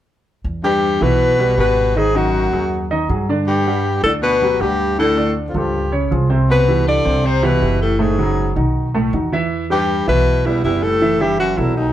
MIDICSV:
0, 0, Header, 1, 5, 480
1, 0, Start_track
1, 0, Key_signature, 1, "minor"
1, 0, Tempo, 377596
1, 559, Time_signature, 4, 2, 24, 8
1, 15164, End_track
2, 0, Start_track
2, 0, Title_t, "Alto saxophone"
2, 0, Program_c, 0, 65
2, 815, Note_on_c, 0, 67, 98
2, 1305, Note_on_c, 0, 71, 107
2, 1324, Note_off_c, 0, 67, 0
2, 2014, Note_off_c, 0, 71, 0
2, 2033, Note_on_c, 0, 71, 90
2, 2517, Note_on_c, 0, 68, 95
2, 2536, Note_off_c, 0, 71, 0
2, 2750, Note_on_c, 0, 66, 86
2, 2770, Note_off_c, 0, 68, 0
2, 3699, Note_off_c, 0, 66, 0
2, 4420, Note_on_c, 0, 67, 85
2, 5084, Note_off_c, 0, 67, 0
2, 5131, Note_on_c, 0, 69, 90
2, 5238, Note_off_c, 0, 69, 0
2, 5379, Note_on_c, 0, 71, 94
2, 5855, Note_on_c, 0, 67, 89
2, 5874, Note_off_c, 0, 71, 0
2, 6332, Note_off_c, 0, 67, 0
2, 6347, Note_on_c, 0, 69, 92
2, 6785, Note_off_c, 0, 69, 0
2, 6983, Note_on_c, 0, 65, 53
2, 7087, Note_on_c, 0, 67, 75
2, 7106, Note_off_c, 0, 65, 0
2, 7547, Note_off_c, 0, 67, 0
2, 8279, Note_on_c, 0, 71, 104
2, 8711, Note_off_c, 0, 71, 0
2, 8754, Note_on_c, 0, 74, 99
2, 9229, Note_on_c, 0, 72, 88
2, 9248, Note_off_c, 0, 74, 0
2, 9481, Note_on_c, 0, 71, 86
2, 9500, Note_off_c, 0, 72, 0
2, 9932, Note_off_c, 0, 71, 0
2, 9940, Note_on_c, 0, 69, 77
2, 10175, Note_on_c, 0, 68, 79
2, 10194, Note_off_c, 0, 69, 0
2, 10891, Note_off_c, 0, 68, 0
2, 12351, Note_on_c, 0, 67, 97
2, 12785, Note_off_c, 0, 67, 0
2, 12820, Note_on_c, 0, 71, 106
2, 13291, Note_on_c, 0, 64, 86
2, 13310, Note_off_c, 0, 71, 0
2, 13520, Note_off_c, 0, 64, 0
2, 13528, Note_on_c, 0, 64, 88
2, 13765, Note_on_c, 0, 69, 95
2, 13784, Note_off_c, 0, 64, 0
2, 14253, Note_on_c, 0, 67, 86
2, 14272, Note_off_c, 0, 69, 0
2, 14481, Note_off_c, 0, 67, 0
2, 14488, Note_on_c, 0, 66, 88
2, 14718, Note_on_c, 0, 64, 77
2, 14737, Note_off_c, 0, 66, 0
2, 14953, Note_off_c, 0, 64, 0
2, 14960, Note_on_c, 0, 63, 67
2, 15164, Note_off_c, 0, 63, 0
2, 15164, End_track
3, 0, Start_track
3, 0, Title_t, "Grand piano"
3, 0, Program_c, 1, 0
3, 810, Note_on_c, 1, 55, 65
3, 814, Note_on_c, 1, 67, 69
3, 818, Note_on_c, 1, 71, 67
3, 1200, Note_off_c, 1, 55, 0
3, 1203, Note_off_c, 1, 67, 0
3, 1205, Note_off_c, 1, 71, 0
3, 1282, Note_on_c, 1, 52, 78
3, 1290, Note_on_c, 1, 64, 75
3, 1294, Note_on_c, 1, 76, 68
3, 1676, Note_off_c, 1, 52, 0
3, 1681, Note_off_c, 1, 64, 0
3, 1683, Note_off_c, 1, 76, 0
3, 1765, Note_on_c, 1, 55, 73
3, 1773, Note_on_c, 1, 71, 69
3, 1775, Note_on_c, 1, 67, 68
3, 1961, Note_off_c, 1, 55, 0
3, 1966, Note_off_c, 1, 71, 0
3, 1967, Note_off_c, 1, 67, 0
3, 2008, Note_on_c, 1, 55, 62
3, 2013, Note_on_c, 1, 67, 64
3, 2019, Note_on_c, 1, 71, 61
3, 2400, Note_off_c, 1, 55, 0
3, 2403, Note_off_c, 1, 67, 0
3, 2407, Note_off_c, 1, 71, 0
3, 2488, Note_on_c, 1, 51, 70
3, 2498, Note_on_c, 1, 63, 74
3, 2499, Note_on_c, 1, 75, 77
3, 2683, Note_off_c, 1, 51, 0
3, 2689, Note_off_c, 1, 63, 0
3, 2690, Note_off_c, 1, 75, 0
3, 2734, Note_on_c, 1, 51, 77
3, 2740, Note_on_c, 1, 75, 75
3, 2742, Note_on_c, 1, 63, 72
3, 3124, Note_off_c, 1, 51, 0
3, 3128, Note_off_c, 1, 75, 0
3, 3129, Note_off_c, 1, 63, 0
3, 3211, Note_on_c, 1, 54, 64
3, 3217, Note_on_c, 1, 66, 61
3, 3219, Note_on_c, 1, 68, 68
3, 3602, Note_off_c, 1, 54, 0
3, 3606, Note_off_c, 1, 66, 0
3, 3607, Note_off_c, 1, 68, 0
3, 3693, Note_on_c, 1, 51, 83
3, 3698, Note_on_c, 1, 63, 88
3, 3698, Note_on_c, 1, 75, 84
3, 3887, Note_off_c, 1, 51, 0
3, 3890, Note_off_c, 1, 63, 0
3, 3890, Note_off_c, 1, 75, 0
3, 3930, Note_on_c, 1, 54, 66
3, 3937, Note_on_c, 1, 66, 64
3, 3942, Note_on_c, 1, 68, 62
3, 4125, Note_off_c, 1, 54, 0
3, 4129, Note_off_c, 1, 66, 0
3, 4133, Note_off_c, 1, 68, 0
3, 4184, Note_on_c, 1, 50, 84
3, 4188, Note_on_c, 1, 62, 83
3, 4194, Note_on_c, 1, 74, 84
3, 4570, Note_off_c, 1, 50, 0
3, 4573, Note_off_c, 1, 62, 0
3, 4577, Note_off_c, 1, 74, 0
3, 4664, Note_on_c, 1, 78, 70
3, 4666, Note_on_c, 1, 55, 70
3, 4674, Note_on_c, 1, 67, 69
3, 5051, Note_off_c, 1, 78, 0
3, 5052, Note_off_c, 1, 55, 0
3, 5057, Note_off_c, 1, 67, 0
3, 5149, Note_on_c, 1, 50, 72
3, 5150, Note_on_c, 1, 62, 75
3, 5152, Note_on_c, 1, 74, 75
3, 5534, Note_off_c, 1, 50, 0
3, 5535, Note_off_c, 1, 62, 0
3, 5536, Note_off_c, 1, 74, 0
3, 5616, Note_on_c, 1, 66, 73
3, 5617, Note_on_c, 1, 54, 69
3, 5621, Note_on_c, 1, 67, 71
3, 5810, Note_off_c, 1, 54, 0
3, 5810, Note_off_c, 1, 66, 0
3, 5812, Note_off_c, 1, 67, 0
3, 5855, Note_on_c, 1, 78, 64
3, 5857, Note_on_c, 1, 55, 60
3, 5863, Note_on_c, 1, 67, 61
3, 6246, Note_off_c, 1, 78, 0
3, 6247, Note_off_c, 1, 55, 0
3, 6250, Note_off_c, 1, 67, 0
3, 6334, Note_on_c, 1, 50, 75
3, 6336, Note_on_c, 1, 62, 77
3, 6344, Note_on_c, 1, 74, 72
3, 6529, Note_off_c, 1, 50, 0
3, 6530, Note_off_c, 1, 62, 0
3, 6534, Note_off_c, 1, 74, 0
3, 6567, Note_on_c, 1, 50, 75
3, 6576, Note_on_c, 1, 62, 80
3, 6580, Note_on_c, 1, 74, 79
3, 6961, Note_off_c, 1, 50, 0
3, 6967, Note_off_c, 1, 62, 0
3, 6969, Note_off_c, 1, 74, 0
3, 7051, Note_on_c, 1, 53, 62
3, 7051, Note_on_c, 1, 65, 64
3, 7057, Note_on_c, 1, 69, 63
3, 7443, Note_off_c, 1, 53, 0
3, 7444, Note_off_c, 1, 65, 0
3, 7447, Note_off_c, 1, 69, 0
3, 7522, Note_on_c, 1, 49, 79
3, 7528, Note_on_c, 1, 61, 78
3, 7532, Note_on_c, 1, 73, 79
3, 7722, Note_off_c, 1, 49, 0
3, 7725, Note_off_c, 1, 61, 0
3, 7727, Note_off_c, 1, 73, 0
3, 7768, Note_on_c, 1, 53, 61
3, 7768, Note_on_c, 1, 65, 61
3, 7773, Note_on_c, 1, 68, 64
3, 7965, Note_off_c, 1, 53, 0
3, 7965, Note_off_c, 1, 65, 0
3, 7968, Note_off_c, 1, 68, 0
3, 8003, Note_on_c, 1, 48, 85
3, 8007, Note_on_c, 1, 60, 81
3, 8007, Note_on_c, 1, 72, 76
3, 8399, Note_off_c, 1, 48, 0
3, 8401, Note_off_c, 1, 60, 0
3, 8401, Note_off_c, 1, 72, 0
3, 8488, Note_on_c, 1, 52, 72
3, 8493, Note_on_c, 1, 64, 71
3, 8497, Note_on_c, 1, 67, 68
3, 8882, Note_off_c, 1, 52, 0
3, 8884, Note_off_c, 1, 64, 0
3, 8887, Note_off_c, 1, 67, 0
3, 8961, Note_on_c, 1, 60, 67
3, 8962, Note_on_c, 1, 48, 74
3, 8963, Note_on_c, 1, 72, 75
3, 9357, Note_off_c, 1, 60, 0
3, 9358, Note_off_c, 1, 48, 0
3, 9359, Note_off_c, 1, 72, 0
3, 9443, Note_on_c, 1, 67, 75
3, 9444, Note_on_c, 1, 52, 72
3, 9445, Note_on_c, 1, 64, 72
3, 9642, Note_off_c, 1, 52, 0
3, 9642, Note_off_c, 1, 67, 0
3, 9643, Note_off_c, 1, 64, 0
3, 9681, Note_on_c, 1, 52, 64
3, 9686, Note_on_c, 1, 64, 66
3, 9691, Note_on_c, 1, 67, 62
3, 10077, Note_off_c, 1, 52, 0
3, 10080, Note_off_c, 1, 64, 0
3, 10083, Note_off_c, 1, 67, 0
3, 10156, Note_on_c, 1, 45, 81
3, 10158, Note_on_c, 1, 57, 77
3, 10164, Note_on_c, 1, 69, 69
3, 10357, Note_off_c, 1, 45, 0
3, 10359, Note_off_c, 1, 57, 0
3, 10362, Note_off_c, 1, 69, 0
3, 10402, Note_on_c, 1, 49, 77
3, 10405, Note_on_c, 1, 54, 82
3, 10409, Note_on_c, 1, 66, 77
3, 10798, Note_off_c, 1, 49, 0
3, 10799, Note_off_c, 1, 54, 0
3, 10802, Note_off_c, 1, 66, 0
3, 10877, Note_on_c, 1, 51, 66
3, 10887, Note_on_c, 1, 63, 69
3, 10888, Note_on_c, 1, 66, 68
3, 11274, Note_off_c, 1, 51, 0
3, 11280, Note_off_c, 1, 63, 0
3, 11281, Note_off_c, 1, 66, 0
3, 11370, Note_on_c, 1, 57, 81
3, 11372, Note_on_c, 1, 45, 82
3, 11375, Note_on_c, 1, 69, 88
3, 11565, Note_off_c, 1, 57, 0
3, 11567, Note_off_c, 1, 45, 0
3, 11568, Note_off_c, 1, 69, 0
3, 11613, Note_on_c, 1, 51, 60
3, 11615, Note_on_c, 1, 63, 60
3, 11617, Note_on_c, 1, 66, 62
3, 11807, Note_off_c, 1, 51, 0
3, 11808, Note_off_c, 1, 63, 0
3, 11809, Note_off_c, 1, 66, 0
3, 11853, Note_on_c, 1, 52, 87
3, 11861, Note_on_c, 1, 64, 88
3, 11864, Note_on_c, 1, 76, 88
3, 12243, Note_off_c, 1, 52, 0
3, 12248, Note_off_c, 1, 64, 0
3, 12250, Note_off_c, 1, 76, 0
3, 12332, Note_on_c, 1, 55, 69
3, 12334, Note_on_c, 1, 67, 74
3, 12338, Note_on_c, 1, 71, 70
3, 12723, Note_off_c, 1, 55, 0
3, 12723, Note_off_c, 1, 67, 0
3, 12726, Note_off_c, 1, 71, 0
3, 12806, Note_on_c, 1, 52, 75
3, 12807, Note_on_c, 1, 64, 82
3, 12811, Note_on_c, 1, 76, 72
3, 13199, Note_off_c, 1, 52, 0
3, 13200, Note_off_c, 1, 64, 0
3, 13201, Note_off_c, 1, 76, 0
3, 13293, Note_on_c, 1, 55, 75
3, 13299, Note_on_c, 1, 67, 70
3, 13304, Note_on_c, 1, 71, 73
3, 13486, Note_off_c, 1, 55, 0
3, 13490, Note_off_c, 1, 67, 0
3, 13492, Note_off_c, 1, 71, 0
3, 13534, Note_on_c, 1, 55, 66
3, 13535, Note_on_c, 1, 67, 61
3, 13541, Note_on_c, 1, 71, 64
3, 13923, Note_off_c, 1, 55, 0
3, 13923, Note_off_c, 1, 67, 0
3, 13927, Note_off_c, 1, 71, 0
3, 14003, Note_on_c, 1, 64, 71
3, 14004, Note_on_c, 1, 52, 80
3, 14014, Note_on_c, 1, 76, 75
3, 14199, Note_off_c, 1, 64, 0
3, 14200, Note_off_c, 1, 52, 0
3, 14206, Note_off_c, 1, 76, 0
3, 14246, Note_on_c, 1, 52, 81
3, 14247, Note_on_c, 1, 64, 80
3, 14251, Note_on_c, 1, 76, 83
3, 14637, Note_off_c, 1, 52, 0
3, 14638, Note_off_c, 1, 64, 0
3, 14640, Note_off_c, 1, 76, 0
3, 14719, Note_on_c, 1, 54, 66
3, 14727, Note_on_c, 1, 66, 59
3, 14728, Note_on_c, 1, 69, 65
3, 15113, Note_off_c, 1, 54, 0
3, 15117, Note_off_c, 1, 66, 0
3, 15118, Note_off_c, 1, 69, 0
3, 15164, End_track
4, 0, Start_track
4, 0, Title_t, "Baritone saxophone"
4, 0, Program_c, 2, 67
4, 807, Note_on_c, 2, 43, 79
4, 1284, Note_on_c, 2, 47, 88
4, 1303, Note_off_c, 2, 43, 0
4, 1990, Note_off_c, 2, 47, 0
4, 1998, Note_on_c, 2, 47, 85
4, 2492, Note_on_c, 2, 44, 84
4, 2511, Note_off_c, 2, 47, 0
4, 2725, Note_on_c, 2, 42, 71
4, 2745, Note_off_c, 2, 44, 0
4, 3686, Note_off_c, 2, 42, 0
4, 4406, Note_on_c, 2, 43, 82
4, 5076, Note_off_c, 2, 43, 0
4, 5124, Note_on_c, 2, 45, 72
4, 5233, Note_off_c, 2, 45, 0
4, 5368, Note_on_c, 2, 47, 91
4, 5859, Note_on_c, 2, 43, 72
4, 5878, Note_off_c, 2, 47, 0
4, 6330, Note_off_c, 2, 43, 0
4, 6338, Note_on_c, 2, 45, 90
4, 6780, Note_off_c, 2, 45, 0
4, 6963, Note_on_c, 2, 41, 42
4, 7057, Note_on_c, 2, 43, 61
4, 7076, Note_off_c, 2, 41, 0
4, 7532, Note_off_c, 2, 43, 0
4, 8254, Note_on_c, 2, 47, 86
4, 8698, Note_off_c, 2, 47, 0
4, 8725, Note_on_c, 2, 50, 77
4, 9214, Note_on_c, 2, 48, 84
4, 9233, Note_off_c, 2, 50, 0
4, 9450, Note_on_c, 2, 47, 78
4, 9469, Note_off_c, 2, 48, 0
4, 9928, Note_off_c, 2, 47, 0
4, 9934, Note_on_c, 2, 45, 69
4, 10157, Note_on_c, 2, 44, 66
4, 10176, Note_off_c, 2, 45, 0
4, 10882, Note_off_c, 2, 44, 0
4, 12350, Note_on_c, 2, 43, 87
4, 12784, Note_off_c, 2, 43, 0
4, 12822, Note_on_c, 2, 47, 89
4, 13305, Note_on_c, 2, 40, 73
4, 13324, Note_off_c, 2, 47, 0
4, 13528, Note_off_c, 2, 40, 0
4, 13535, Note_on_c, 2, 40, 74
4, 13766, Note_on_c, 2, 45, 88
4, 13786, Note_off_c, 2, 40, 0
4, 14233, Note_on_c, 2, 43, 76
4, 14253, Note_off_c, 2, 45, 0
4, 14475, Note_off_c, 2, 43, 0
4, 14482, Note_on_c, 2, 42, 66
4, 14722, Note_on_c, 2, 40, 68
4, 14741, Note_off_c, 2, 42, 0
4, 14942, Note_off_c, 2, 40, 0
4, 14950, Note_on_c, 2, 39, 64
4, 15164, Note_off_c, 2, 39, 0
4, 15164, End_track
5, 0, Start_track
5, 0, Title_t, "Upright bass"
5, 0, Program_c, 3, 32
5, 565, Note_on_c, 3, 40, 82
5, 1233, Note_off_c, 3, 40, 0
5, 1284, Note_on_c, 3, 35, 75
5, 1953, Note_off_c, 3, 35, 0
5, 2003, Note_on_c, 3, 32, 84
5, 3130, Note_off_c, 3, 32, 0
5, 3209, Note_on_c, 3, 39, 83
5, 3877, Note_off_c, 3, 39, 0
5, 3932, Note_on_c, 3, 43, 87
5, 5055, Note_off_c, 3, 43, 0
5, 5124, Note_on_c, 3, 38, 81
5, 5795, Note_off_c, 3, 38, 0
5, 5854, Note_on_c, 3, 38, 80
5, 6977, Note_off_c, 3, 38, 0
5, 7044, Note_on_c, 3, 37, 78
5, 7716, Note_off_c, 3, 37, 0
5, 7776, Note_on_c, 3, 36, 79
5, 8897, Note_off_c, 3, 36, 0
5, 8967, Note_on_c, 3, 36, 78
5, 9637, Note_off_c, 3, 36, 0
5, 9683, Note_on_c, 3, 30, 82
5, 10810, Note_off_c, 3, 30, 0
5, 10884, Note_on_c, 3, 35, 82
5, 11554, Note_off_c, 3, 35, 0
5, 11605, Note_on_c, 3, 40, 88
5, 12730, Note_off_c, 3, 40, 0
5, 12812, Note_on_c, 3, 35, 89
5, 13477, Note_off_c, 3, 35, 0
5, 13522, Note_on_c, 3, 30, 83
5, 14646, Note_off_c, 3, 30, 0
5, 14719, Note_on_c, 3, 35, 82
5, 15164, Note_off_c, 3, 35, 0
5, 15164, End_track
0, 0, End_of_file